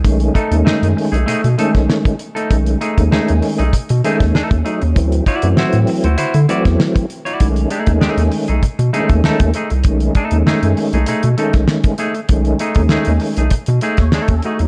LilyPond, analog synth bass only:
\new Staff \with { instrumentName = "Analog synth bass" } { \clef bass \time 4/4 \key b \mixolydian \tempo 4 = 98 b,,8 r16 dis,16 fis,16 fis,16 r16 b,,16 b,16 b,16 r16 b,,16 r4 | b,,8 r16 dis,16 dis,16 dis,16 r16 b,,16 b,16 b,16 r16 dis,16 dis,16 dis,16 r16 dis,16 | d,8 r16 fis,16 a,16 a,16 r16 d,16 d16 d16 r16 e,16 r4 | b,,8 r16 dis,16 dis,16 dis,16 r16 b,,16 b,16 b,16 r16 dis,16 dis,16 dis,16 r16 c,16 |
b,,8 r16 dis,16 fis,16 fis,16 r16 b,,16 b,16 b,16 r16 b,,16 r4 | b,,8 r16 dis,16 dis,16 dis,16 r16 b,,16 b,16 b,16 r16 dis,16 dis,16 dis,16 r16 dis,16 | }